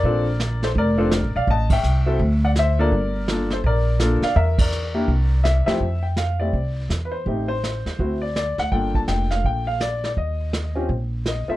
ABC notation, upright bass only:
X:1
M:4/4
L:1/8
Q:"Swing" 1/4=166
K:Cmix
V:1 name="Upright bass" clef=bass
B,,,4 F,,,2- (3F,,, A,,, B,,, | A,,,2 C,,2 D,,4 | G,,,4 B,,,3 z | E,,4 C,,3 z |
[K:F] F,,4 C,,2 E,,2 | A,,,3 _E,, D,,3 D,, | G,,,2 F,,,2 B,,,4 | _E,,4 B,,,3 z |]